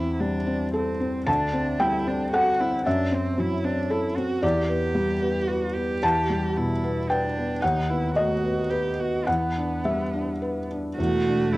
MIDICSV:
0, 0, Header, 1, 5, 480
1, 0, Start_track
1, 0, Key_signature, 1, "minor"
1, 0, Tempo, 534283
1, 1144, Time_signature, 3, 2, 24, 8
1, 2096, Tempo, 523560
1, 4976, Tempo, 536193
1, 7376, Tempo, 562324
1, 10295, End_track
2, 0, Start_track
2, 0, Title_t, "Cello"
2, 0, Program_c, 0, 42
2, 0, Note_on_c, 0, 64, 52
2, 178, Note_on_c, 0, 62, 54
2, 192, Note_off_c, 0, 64, 0
2, 657, Note_off_c, 0, 62, 0
2, 662, Note_on_c, 0, 60, 48
2, 1136, Note_off_c, 0, 60, 0
2, 1140, Note_on_c, 0, 62, 57
2, 1614, Note_on_c, 0, 64, 59
2, 1627, Note_off_c, 0, 62, 0
2, 1862, Note_on_c, 0, 62, 53
2, 1876, Note_off_c, 0, 64, 0
2, 2081, Note_off_c, 0, 62, 0
2, 2086, Note_on_c, 0, 66, 62
2, 2342, Note_on_c, 0, 64, 54
2, 2355, Note_off_c, 0, 66, 0
2, 2576, Note_off_c, 0, 64, 0
2, 2582, Note_on_c, 0, 62, 53
2, 2838, Note_on_c, 0, 60, 57
2, 2852, Note_off_c, 0, 62, 0
2, 3074, Note_on_c, 0, 64, 57
2, 3087, Note_off_c, 0, 60, 0
2, 3299, Note_on_c, 0, 62, 55
2, 3313, Note_off_c, 0, 64, 0
2, 3536, Note_on_c, 0, 64, 56
2, 3550, Note_off_c, 0, 62, 0
2, 3771, Note_on_c, 0, 66, 64
2, 3784, Note_off_c, 0, 64, 0
2, 4013, Note_on_c, 0, 67, 63
2, 4027, Note_off_c, 0, 66, 0
2, 4252, Note_off_c, 0, 67, 0
2, 4258, Note_on_c, 0, 67, 64
2, 4974, Note_on_c, 0, 66, 57
2, 4987, Note_off_c, 0, 67, 0
2, 5209, Note_on_c, 0, 67, 61
2, 5222, Note_off_c, 0, 66, 0
2, 5954, Note_on_c, 0, 64, 57
2, 5967, Note_off_c, 0, 67, 0
2, 6421, Note_on_c, 0, 62, 51
2, 6434, Note_off_c, 0, 64, 0
2, 6885, Note_on_c, 0, 63, 51
2, 6898, Note_off_c, 0, 62, 0
2, 7140, Note_on_c, 0, 64, 49
2, 7154, Note_off_c, 0, 63, 0
2, 7370, Note_off_c, 0, 64, 0
2, 7376, Note_on_c, 0, 66, 52
2, 7840, Note_on_c, 0, 67, 46
2, 7852, Note_off_c, 0, 66, 0
2, 8095, Note_on_c, 0, 66, 49
2, 8108, Note_off_c, 0, 67, 0
2, 8336, Note_on_c, 0, 59, 47
2, 8349, Note_off_c, 0, 66, 0
2, 9552, Note_off_c, 0, 59, 0
2, 9781, Note_on_c, 0, 66, 69
2, 10255, Note_on_c, 0, 64, 55
2, 10268, Note_off_c, 0, 66, 0
2, 10295, Note_off_c, 0, 64, 0
2, 10295, End_track
3, 0, Start_track
3, 0, Title_t, "Felt piano"
3, 0, Program_c, 1, 0
3, 0, Control_c, 1, 64, 127
3, 0, Note_on_c, 1, 40, 51
3, 0, Note_on_c, 1, 60, 39
3, 0, Note_on_c, 1, 72, 53
3, 183, Note_on_c, 1, 55, 40
3, 323, Note_off_c, 1, 60, 0
3, 419, Note_on_c, 1, 60, 39
3, 565, Note_off_c, 1, 55, 0
3, 661, Note_on_c, 1, 69, 43
3, 806, Note_off_c, 1, 60, 0
3, 871, Note_off_c, 1, 72, 0
3, 899, Note_on_c, 1, 60, 38
3, 1048, Note_off_c, 1, 69, 0
3, 1112, Note_off_c, 1, 40, 0
3, 1137, Note_on_c, 1, 81, 69
3, 1141, Note_on_c, 1, 38, 50
3, 1142, Note_off_c, 1, 60, 0
3, 1162, Control_c, 1, 64, 0
3, 1307, Control_c, 1, 64, 127
3, 1376, Note_on_c, 1, 60, 45
3, 1583, Note_off_c, 1, 81, 0
3, 1614, Note_on_c, 1, 79, 71
3, 1617, Note_on_c, 1, 55, 42
3, 1760, Note_off_c, 1, 60, 0
3, 1856, Note_on_c, 1, 60, 43
3, 2000, Note_off_c, 1, 55, 0
3, 2059, Note_off_c, 1, 79, 0
3, 2092, Note_on_c, 1, 69, 45
3, 2100, Note_on_c, 1, 78, 68
3, 2240, Note_off_c, 1, 60, 0
3, 2339, Note_on_c, 1, 60, 44
3, 2479, Note_off_c, 1, 69, 0
3, 2540, Note_off_c, 1, 38, 0
3, 2546, Note_off_c, 1, 78, 0
3, 2579, Note_off_c, 1, 60, 0
3, 2580, Note_on_c, 1, 42, 56
3, 2583, Note_on_c, 1, 76, 63
3, 2595, Control_c, 1, 64, 0
3, 2733, Control_c, 1, 64, 127
3, 2811, Note_on_c, 1, 60, 45
3, 3054, Note_on_c, 1, 54, 46
3, 3198, Note_off_c, 1, 60, 0
3, 3294, Note_on_c, 1, 60, 42
3, 3436, Note_off_c, 1, 54, 0
3, 3535, Note_on_c, 1, 69, 47
3, 3677, Note_off_c, 1, 60, 0
3, 3740, Note_off_c, 1, 76, 0
3, 3778, Note_on_c, 1, 60, 40
3, 3918, Note_off_c, 1, 69, 0
3, 3978, Note_off_c, 1, 42, 0
3, 4013, Note_on_c, 1, 40, 56
3, 4016, Note_off_c, 1, 60, 0
3, 4016, Note_on_c, 1, 74, 69
3, 4032, Control_c, 1, 64, 0
3, 4164, Control_c, 1, 64, 127
3, 4258, Note_on_c, 1, 59, 47
3, 4492, Note_on_c, 1, 55, 44
3, 4640, Note_off_c, 1, 59, 0
3, 4740, Note_on_c, 1, 59, 44
3, 4878, Note_off_c, 1, 55, 0
3, 4982, Note_on_c, 1, 71, 42
3, 5123, Note_off_c, 1, 59, 0
3, 5222, Note_on_c, 1, 59, 39
3, 5373, Note_off_c, 1, 71, 0
3, 5432, Note_off_c, 1, 40, 0
3, 5433, Note_off_c, 1, 74, 0
3, 5470, Note_on_c, 1, 40, 55
3, 5472, Note_on_c, 1, 81, 77
3, 5487, Control_c, 1, 64, 0
3, 5616, Note_off_c, 1, 59, 0
3, 5655, Control_c, 1, 64, 127
3, 5713, Note_on_c, 1, 55, 41
3, 5956, Note_on_c, 1, 47, 41
3, 6092, Note_off_c, 1, 55, 0
3, 6196, Note_on_c, 1, 59, 42
3, 6332, Note_off_c, 1, 47, 0
3, 6389, Note_off_c, 1, 81, 0
3, 6429, Note_on_c, 1, 79, 59
3, 6432, Note_on_c, 1, 71, 41
3, 6571, Note_off_c, 1, 59, 0
3, 6671, Note_on_c, 1, 59, 38
3, 6806, Note_off_c, 1, 71, 0
3, 6862, Note_off_c, 1, 40, 0
3, 6866, Note_off_c, 1, 79, 0
3, 6899, Note_on_c, 1, 78, 65
3, 6902, Note_off_c, 1, 59, 0
3, 6912, Control_c, 1, 64, 0
3, 6913, Note_on_c, 1, 39, 50
3, 7039, Control_c, 1, 64, 127
3, 7149, Note_on_c, 1, 59, 40
3, 7343, Note_off_c, 1, 78, 0
3, 7382, Note_on_c, 1, 75, 65
3, 7388, Note_on_c, 1, 57, 39
3, 7521, Note_off_c, 1, 59, 0
3, 7626, Note_on_c, 1, 59, 37
3, 7754, Note_off_c, 1, 57, 0
3, 7812, Note_off_c, 1, 75, 0
3, 7849, Note_on_c, 1, 71, 57
3, 7993, Note_off_c, 1, 59, 0
3, 8091, Note_on_c, 1, 59, 31
3, 8296, Note_off_c, 1, 71, 0
3, 8300, Note_off_c, 1, 39, 0
3, 8327, Note_on_c, 1, 78, 60
3, 8331, Note_off_c, 1, 59, 0
3, 8331, Note_on_c, 1, 40, 41
3, 8344, Control_c, 1, 64, 0
3, 8509, Control_c, 1, 64, 127
3, 8578, Note_on_c, 1, 62, 34
3, 8782, Note_off_c, 1, 78, 0
3, 8822, Note_on_c, 1, 55, 33
3, 8823, Note_on_c, 1, 76, 47
3, 8965, Note_off_c, 1, 62, 0
3, 9066, Note_on_c, 1, 62, 35
3, 9209, Note_off_c, 1, 55, 0
3, 9309, Note_on_c, 1, 71, 36
3, 9452, Note_off_c, 1, 62, 0
3, 9516, Note_off_c, 1, 76, 0
3, 9557, Note_on_c, 1, 62, 30
3, 9696, Note_off_c, 1, 71, 0
3, 9757, Note_off_c, 1, 40, 0
3, 9792, Note_on_c, 1, 40, 42
3, 9793, Note_off_c, 1, 62, 0
3, 9804, Control_c, 1, 64, 0
3, 9956, Control_c, 1, 64, 127
3, 10034, Note_on_c, 1, 62, 37
3, 10265, Note_on_c, 1, 55, 35
3, 10295, Note_off_c, 1, 40, 0
3, 10295, Note_off_c, 1, 55, 0
3, 10295, Note_off_c, 1, 62, 0
3, 10295, End_track
4, 0, Start_track
4, 0, Title_t, "Viola"
4, 0, Program_c, 2, 41
4, 9791, Note_on_c, 2, 57, 56
4, 10295, Note_off_c, 2, 57, 0
4, 10295, End_track
5, 0, Start_track
5, 0, Title_t, "Double bass"
5, 0, Program_c, 3, 43
5, 9795, Note_on_c, 3, 28, 43
5, 10295, Note_off_c, 3, 28, 0
5, 10295, End_track
0, 0, End_of_file